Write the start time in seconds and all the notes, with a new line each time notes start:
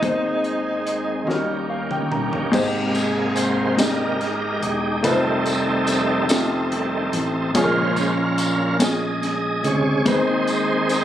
Already playing: D#4
0.02 D#2 D#3 G#3 B3 C4 D#4 G#4 C5, kick, closed hi-hat
0.10 C4
0.44 closed hi-hat
0.87 cross-stick, closed hi-hat
1.27 D#2 D#3 F#3 A#3 C#4 D#4 F4 A#4, snare
1.34 G3 G4
1.70 F5
1.91 G5, mid tom
2.12 A#5, mid tom
2.33 floor tom
2.52 G#1 G#2 C3 G#3 A#3 D#4 G4 C5, kick, crash, tambourine
2.87 G4
2.94 G#4, closed hi-hat, tambourine
3.36 C5, closed hi-hat, tambourine
3.77 C3 D#3 G#3 A#3 D#4 G4 A#4 D5, snare, closed hi-hat, tambourine
3.85 D#5
4.21 snare, closed hi-hat
4.62 E1, closed hi-hat
5.02 F1 D#3 G3 A3 C4 D#4 F4 A4 B4, kick, closed hi-hat, tambourine
5.11 C5
5.46 closed hi-hat, tambourine
5.87 snare, closed hi-hat, tambourine
6.29 A3 C4 D#4 F4 G4 A4, snare, closed hi-hat, tambourine
6.72 D#3 G3 A3, closed hi-hat
7.13 A1, closed hi-hat
7.54 A#1 A#2 C#3 G#3 C#4 F4 G#4 A#4 C5, kick, closed hi-hat, tambourine
7.63 A#4
7.96 closed hi-hat, tambourine
8.38 closed hi-hat, tambourine
8.79 G#3 C#4 F4 G#4 D#5, snare, closed hi-hat, tambourine
9.23 snare, closed hi-hat
9.64 D2 C3 C#3 G#3 C#5, closed hi-hat
10.05 D#2 D#3 G#3 C4 D#4 G#4 B4 C5, kick, closed hi-hat, tambourine
10.14 C5
10.47 closed hi-hat, tambourine
10.89 snare, closed hi-hat, tambourine